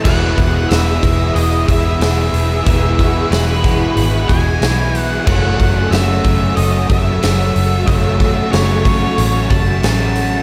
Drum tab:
CC |x-------|--------|x-------|--------|
HH |-ooooooo|oooooooo|-ooooooo|oooooooo|
SD |--o---o-|--o---o-|--o---o-|--o---o-|
BD |oo-o-o--|oo-o-o--|oo-o-o--|oo-o-o--|